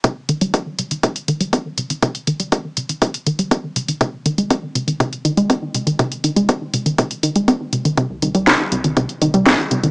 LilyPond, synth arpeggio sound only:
\new Staff \with { instrumentName = "Synth arpeggio sound" } { \clef bass \time 4/4 \key c \minor \tempo 4 = 121 c16 r16 ees16 g16 c'16 r16 c16 ees16 c16 r16 ees16 g16 c'16 r16 c16 ees16 | c16 r16 ees16 g16 c'16 r16 c16 ees16 c16 r16 ees16 g16 c'16 r16 c16 ees16 | c16 r16 ees16 aes16 c'16 r16 c16 ees16 c16 r16 ees16 aes16 c'16 r16 c16 ees16 | c16 r16 ees16 aes16 c'16 r16 c16 ees16 c16 r16 ees16 aes16 c'16 r16 c16 ees16 |
c16 r16 ees16 g16 c'16 r16 c16 ees16 c16 r16 ees16 g16 c'16 r16 c16 ees16 | }